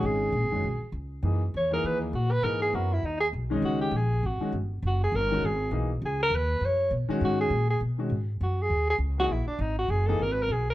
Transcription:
X:1
M:4/4
L:1/8
Q:"Swing" 1/4=201
K:C#dor
V:1 name="Tenor saxophone"
G6 z2 | z2 c A B D F B | A G F E D G z2 | F =G ^G2 F2 z2 |
F G A2 G2 z2 | G A B2 c2 z2 | F G2 G z4 | F G2 G z F E =D |
D F G =A (3^A B A G A |]
V:2 name="Grand piano"
[D,G,CG]2 z [D,G,CF] z4 | [E,A,DG] z2 [E,A,DG]3 z2 | [E,A,DG]2 [F,B,EA] z4 [D,G,CD]- | [D,G,CD]2 z3 [D,G,CF] z2 |
z3 [D,G,CF] z2 [E,A,DG] z | z6 z [D,G,CF]- | [D,G,CF]2 z3 [D,G,CF] z2 | z4 z [E,A,DG] z2 |
z3 [E,A,DG] z4 |]
V:3 name="Upright bass" clef=bass
G,,,2 (3A,,, G,,, F,,, B,,, z C,,2 | F,,2 E,,2 D,,2 A,,2 | G,,2 F,,2 D,,2 B,,,2 | C,,2 A,,,2 G,,, z =G,,,2 |
F,,,2 =G,,,2 ^G,,,2 B,,,2 | C,,2 D,,2 F,,2 B,, z | G,,2 A,,2 B,,2 G,,2 | F,,2 D,,2 C,,2 A,,, z |
G,,,2 F,,,2 G,,,2 B,,,2 |]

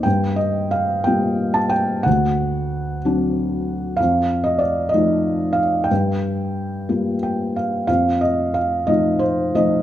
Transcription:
X:1
M:6/8
L:1/16
Q:3/8=60
K:Gm
V:1 name="Felt piano"
g2 e2 f2 g3 a g2 | ^f6 z6 | f3 e d2 e4 f2 | g8 g2 f2 |
[K:Fmix] f2 e2 f2 e2 c2 e2 |]
V:2 name="Felt piano"
G,,6 [G,B,F]6 | D,,6 [^F,CD]6 | F,,6 [F,A,E]6 | G,,6 [G,B,F]6 |
[K:Fmix] F,,6 [F,A,E]4 [F,A,E]2 |]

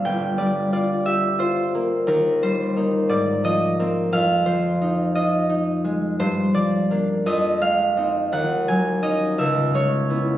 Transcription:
X:1
M:6/8
L:1/8
Q:3/8=57
K:Gdor
V:1 name="Harp"
[dfg] d d e c2 | B c2 d _e2 | f c2 _e3 | c d2 _e f2 |
_g _a _e _f _d2 |]
V:2 name="Harp"
[G,,,G,DF] G, F G F B, | _E,, G, [B,_E] _A,, F, [B,C] | F,, F, _E F E _A, | G,, F, [B,D] F,, _A, [C_E] |
_E,, _G, [_D_E] _D,, _A, [_C_F] |]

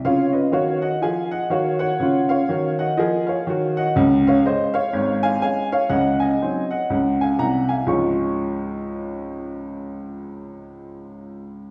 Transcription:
X:1
M:4/4
L:1/8
Q:"Swing" 1/4=123
K:Db
V:1 name="Upright piano"
[df] [_ce] [df] [eg] [fa] [eg] [df] [dg]- | [dg] [df]2 [eg] [Be] [df]2 [eg] | z [df] [ce] [df]2 [fa] [fa] [df] | [eg] [ea]2 [eg]2 [fa] [gb] [fa] |
[D,,A,,F,A,DFd']8- | [D,,A,,F,A,DFd']8 |]
V:2 name="Upright piano" clef=bass
[D,F]2 [E,G]2 [F,A]2 [E,G]2 | [D,F]2 [E,G]2 [F,A]2 [E,G]2 | [D,,D,]2 [A,D]2 [A,,,A,,]2 [A,D]2 | [D,,D,]2 [G,CE]2 [D,,D,]2 [C,,C,]2 |
z8 | z8 |]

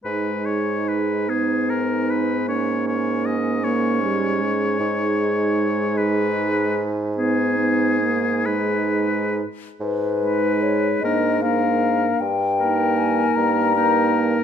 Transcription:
X:1
M:6/8
L:1/8
Q:3/8=51
K:G#m
V:1 name="Flute"
z6 | z6 | z6 | z6 |
B2 c d ^e2 | =g2 ^g a3 |]
V:2 name="Oboe"
B c B G A B | c c d c3- | c3 B2 z | G3 B2 z |
z B2 A A2 | z A3 A2 |]
V:3 name="Clarinet"
D6 | C6 | D4- D z | D3 D2 z |
z D2 =D D2 | z D3 D2 |]
V:4 name="French horn"
G,3 B,3 | A,3 A, =G, ^G,- | G,4- G, z | B, B, A, G,2 z |
z G,2 A, A,2 | z A,3 A,2 |]
V:5 name="Bassoon" clef=bass
G,,6- | G,,6 | G,,6- | G,,4- G,, z |
G,,3 G,,3 | =G,,3 G,,3 |]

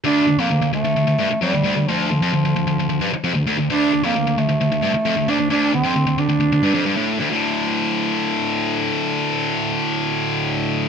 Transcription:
X:1
M:4/4
L:1/16
Q:1/4=132
K:Dm
V:1 name="Bass clarinet"
D3 B,3 A,6 G,4 | F,12- F,2 z2 | D3 B,3 A,8 D2 | D2 C4 D8 z2 |
z16 | z16 |]
V:2 name="Distorted electric guitar" clef=bass
D,,2 D,, F,, D,, D,, D,, D,, D,, D,, G,, z F,, D,, D,, D,, | D,,2 D,, F,, D,, D,, D,, D,, D,, D,, G,, z F,, D,, D,, D,, | D,,2 D,, F,, D,, D,, D,, D,, D,, D,, G,, z F,, D,, D,, D,, | D,,2 D,, F,, D,, D,, D,, D,, D,, D,, G,, F,, G,, A,,2 D,, |
[D,,A,,D,]16- | [D,,A,,D,]16 |]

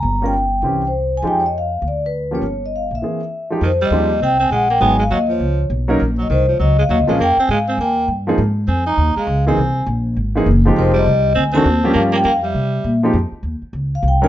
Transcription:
X:1
M:4/4
L:1/16
Q:"Swing" 1/4=202
K:Fm
V:1 name="Vibraphone"
b2 g8 c4 a2 | g3/2 d/2 e2 f4 =d2 =B4 ^c2- | ^c2 e2 f2 =e8 z2 | c2 e6 g2 a2 _g2 =g2 |
a2 f2 e2 d6 z4 | z2 e2 c2 d2 e2 f2 e2 f2 | g2 a2 f2 a2 g4 z4 | z4 a2 b4 f4 a2- |
a4 z12 | c2 e6 a2 =a6 | f2 g2 f2 =e8 z2 | z8 z2 f2 g2 a2 |]
V:2 name="Grand piano"
z2 [G,DFB]2 z4 [=E,CDG]2 z6 | [F,A,EG]2 z12 [F,B,^CG]2 | z8 [=E,B,C^G]2 z4 [F,^G,^D=G]2 | z4 [F,A,CEG]2 z8 z2 |
[_G,A,_CEA]2 z12 [G,B,DEB]2 | z12 z2 [F,B,CDA]2 | z12 z2 [F,B,CEA]2 | z12 z2 [=E,B,C_EA]2 |
z8 z2 [=E,B,C^D^G]2 z2 [F,^G,CD=G]2- | [F,^G,C^D=G]4 z6 [E,=A,C=D^F]2 z2 [=F,=G,B,_DG]2- | [F,G,B,DG]4 z8 z2 [F,A,CEG]2 | z12 z2 [_G,B,DEB]2 |]
V:3 name="Alto saxophone" clef=bass
z16 | z16 | z16 | E,2 G,6 C2 C2 A,2 B,2 |
_C2 A,2 _G,2 F,6 z4 | z2 _G,2 E,2 F,2 G,2 A,2 G,2 A,2 | B,2 C2 A,2 C2 B,4 z4 | z4 C2 E4 A,4 C2- |
C4 z12 | E,2 G,6 C2 C6 | B,2 B,2 B,2 G,8 z2 | z16 |]
V:4 name="Upright bass" clef=bass
G,,,8 C,,8 | F,,8 =D,,8 | G,,,6 B,,,2 z8 | F,,4 E,,4 C,,4 B,,,4 |
A,,,4 E,,4 D,,4 _C,,4 | B,,,4 C,,4 D,,4 (3E,,2 D,,2 B,,,2 | F,,2 z2 A,,4 E,,4 G,,4 | A,,4 F,,4 E,,2 z2 D,,4 |
C,,4 B,,,4 ^G,,,4 _G,,,4 | F,,,4 C,,4 =D,,4 E,,4 | G,,4 F,,4 C,4 B,,4 | F,,2 z2 E,,2 z2 D,,4 C,,4 |]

